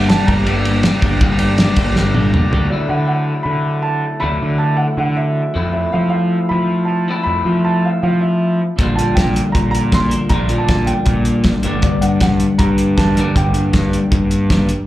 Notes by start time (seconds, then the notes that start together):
Already playing: G1 G2 D3 G3 A#3 D4 G4 A#4 D5 A#5
0.08 G3 A#3 D4 G4 A5, snare, ride
0.27 G1 G3 A#3 D4 G4 A#5, kick, ride
0.45 G2 D3 G3 A#3 D4 G4, ride
0.64 G3 A#3 D4 G4, ride
0.83 G3 A#3 D4 G4, snare, ride
1.02 G1 G3 A#3 D4 G4, kick, ride
1.20 G1 G2 D3 G3 A#3 D4 G4, kick, ride
1.39 G3 A#3 D4 G4, ride
1.58 G3 A#3 D4 G4, snare, ride
1.76 G1 G3 A#3 D4 G4, kick, ride
1.95 G2 D3 G3 A#3 D4 G4, snare
2.14 G3 A#3 D4 G4, high tom
2.33 G3 A#3 D4 G4, mid tom
2.51 D2 G3 A#3 D4 G4, floor tom
2.70 D2 D3 F#3 A3 D4 E4 D5
2.89 D3 F#5
3.07 F#5
3.43 D3 B5
3.82 A5
4.20 D2 D3 F#3 A3 D4 E4 B5
4.42 D3
4.58 A5
4.77 F#5
4.97 D3 F#5
5.17 E5
5.54 F2 F3 A3 C4 E4
5.73 E5
5.93 F3 F5
6.10 F5
6.49 F3 B5
6.85 A5
7.08 F3 A3 C4 E4
7.23 F2 B5
7.45 F3
7.64 A5
7.85 F5
8.03 F3 F5
8.21 E5
8.76 A#1 A#2 D3 F3 A#3 D4 A#4, kick, closed hi-hat
8.80 D3 G3 D4 F4
8.96 A#2 A5, closed hi-hat
9.15 G5, kick, snare, closed hi-hat
9.36 closed hi-hat
9.52 A#2 A#5, kick, closed hi-hat
9.71 A#5, closed hi-hat
9.92 C6, kick, snare, closed hi-hat
10.09 A#2 D3 F3 A#3 D4 A#4, closed hi-hat
10.28 A#1 A#2 D3 F3 A#3 D4 A#4 A#5, kick, closed hi-hat
10.32 G3 D4 F4
10.49 A#2, closed hi-hat
10.58 A5
10.68 kick, snare, closed hi-hat
10.87 G5, closed hi-hat
11.06 A#2, kick, closed hi-hat
11.25 closed hi-hat
11.44 kick, snare, closed hi-hat
11.61 G1 G2 D3 G3 A#3 D4 A#4, closed hi-hat
11.65 A#3 D4 G4
11.82 D5, kick, closed hi-hat
12.01 G2 F#5, closed hi-hat
12.20 F#5, kick, snare, closed hi-hat
12.40 closed hi-hat
12.58 G2 A#5, kick, closed hi-hat
12.78 closed hi-hat
12.96 G2 D3 G3 A#3 D4 A#4 A5, kick, snare, closed hi-hat
13.16 G2 D3 G3 A#3 D4 G4 A#4, closed hi-hat
13.36 G1 G5, kick, closed hi-hat
13.54 G2, closed hi-hat
13.73 kick, snare, closed hi-hat
13.93 closed hi-hat
14.11 G2, kick, closed hi-hat
14.31 closed hi-hat
14.49 G2 D3 G3 A#3 D4 A#4, kick, snare, closed hi-hat
14.69 closed hi-hat